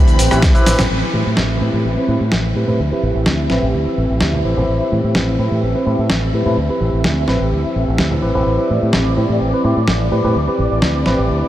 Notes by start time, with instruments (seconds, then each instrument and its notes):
Already playing: fingered electric bass D2, tine electric piano C4 E4 G4 B4, string machine C4 B5
0.08 closed hi-hat, tambourine, shaker
0.19 fingered electric bass A1, open hi-hat, tambourine, shaker
0.31 fingered electric bass A1, tine electric piano C4 E4 G4 B4, cross-stick, closed hi-hat, tambourine, shaker
0.42 fingered electric bass D2, kick, snare, closed hi-hat, tambourine, high conga, shaker
0.54 tine electric piano C4 E4 G4 B4, closed hi-hat, tambourine, low conga, shaker
0.66 fingered electric bass A1, tine electric piano C4 E4 G4 B4, snare, open hi-hat, tambourine, shaker
0.79 fingered electric bass A1, snare, closed hi-hat, tambourine, low conga, shaker
0.90 fingered electric bass A1, string machine E5 E6, tambourine
1.01 tine electric piano C4 E4 G4 B4, tambourine
1.13 fingered electric bass A2, tambourine, high conga
1.26 fingered electric bass A2
1.37 fingered electric bass A1, snare, tambourine, low conga
1.61 fingered electric bass A2, tine electric piano C4 E4 G4 B4, tambourine
1.73 fingered electric bass A2, tambourine, high conga
1.85 fingered electric bass A1, tambourine
1.97 tine electric piano C4 E4 G4 B4, muted fingered electric bass stroke
2.08 fingered electric bass A2, tine electric piano C4 E4 G4 B4
2.20 fingered electric bass A2, tambourine
2.32 fingered electric bass A1, snare, tambourine, high conga
2.44 tambourine
2.55 fingered electric bass A2, tine electric piano C4 E4 G4 B4
2.67 fingered electric bass A2, tine electric piano C4 E4 G4 B4, tambourine, low conga
2.79 fingered electric bass D2
2.91 tine electric piano C4 E4 G4 B4, muted fingered electric bass stroke
3.02 fingered electric bass A1, tambourine, high conga
3.15 fingered electric bass A1, tambourine
3.26 fingered electric bass D2, snare, tambourine, low conga
3.50 fingered electric bass A1, tine electric piano C4 E4 G4 B4, snare
3.62 fingered electric bass A1, tambourine, high conga
3.74 fingered electric bass D2, tambourine
3.86 muted fingered electric bass stroke
3.97 fingered electric bass A1
4.10 fingered electric bass A1, tambourine
4.21 fingered electric bass D2, tine electric piano C4 E4 G4, snare, tambourine, high conga
4.33 tambourine, low conga
4.44 fingered electric bass A1, tine electric piano C4 E4 G4 B4
4.56 fingered electric bass A1, tine electric piano C4 E4 G4 B4, tambourine, low conga
4.68 fingered electric bass A1
4.79 tine electric piano C4 E4 G4 B4, tambourine
4.92 fingered electric bass A2, tambourine, high conga
5.04 fingered electric bass A2, tambourine
5.15 fingered electric bass A1, snare, tambourine, low conga
5.38 fingered electric bass A2, tine electric piano C4 E4 G4 B4, tambourine
5.51 fingered electric bass A2, tambourine, high conga
5.63 fingered electric bass A1
5.75 tine electric piano C4 E4 G4 B4, muted fingered electric bass stroke
5.86 fingered electric bass A2, tine electric piano C4 E4 G4 B4, tambourine
5.98 fingered electric bass A2, tambourine
6.09 fingered electric bass A1, snare, tambourine, high conga
6.23 tambourine
6.33 fingered electric bass A2, tine electric piano C4 E4 G4 B4
6.45 fingered electric bass A2, tine electric piano C4 E4 G4 B4, tambourine, low conga
6.57 fingered electric bass D2
6.69 tine electric piano C4 E4 G4 B4, muted fingered electric bass stroke, tambourine
6.80 fingered electric bass A1, tambourine, high conga
6.93 fingered electric bass A1, tambourine
7.04 fingered electric bass D2, snare, tambourine, low conga
7.27 fingered electric bass A1, tine electric piano C4 E4 G4 B4, snare
7.39 fingered electric bass A1, tambourine, high conga
7.52 fingered electric bass D2
7.64 muted fingered electric bass stroke, tambourine
7.76 fingered electric bass A1
7.88 fingered electric bass A1
7.98 fingered electric bass D2, tine electric piano C4 E4 G4 B4, snare, tambourine, high conga
8.11 tambourine, low conga
8.22 fingered electric bass A1, tine electric piano C4 E4 G4 B4, tambourine
8.34 fingered electric bass A1, tine electric piano C4 E4 G4 B4, tambourine, low conga
8.46 fingered electric bass A1, string machine D5 D6, tambourine
8.57 tine electric piano C4 E4 G4 B4, tambourine
8.70 fingered electric bass A2, tambourine, high conga
8.82 fingered electric bass A2
8.92 fingered electric bass A1, snare, tambourine, low conga
9.17 fingered electric bass A2, tine electric piano C4 E4 G4 B4, tambourine
9.29 fingered electric bass A2, tambourine, high conga
9.41 fingered electric bass A1
9.53 tine electric piano C4 E4 G4 B4, muted fingered electric bass stroke
9.64 fingered electric bass A2, tine electric piano C4 E4 G4 B4
9.77 fingered electric bass A2, tambourine
9.88 fingered electric bass A1, snare, tambourine, high conga
10.00 tambourine
10.11 fingered electric bass A2, tine electric piano C4 E4 G4 B4
10.23 fingered electric bass A2, tine electric piano C4 E4 G4 B4, tambourine, low conga
10.35 fingered electric bass D2
10.47 tine electric piano C4 E4 G4 B4, muted fingered electric bass stroke, tambourine
10.58 fingered electric bass A1, tambourine, high conga
10.71 fingered electric bass A1, tambourine
10.82 fingered electric bass D2, snare, tambourine, low conga
11.06 fingered electric bass A1, tine electric piano C4 E4 G4 B4, snare
11.18 fingered electric bass A1, tambourine, high conga
11.29 fingered electric bass D2, tambourine
11.42 muted fingered electric bass stroke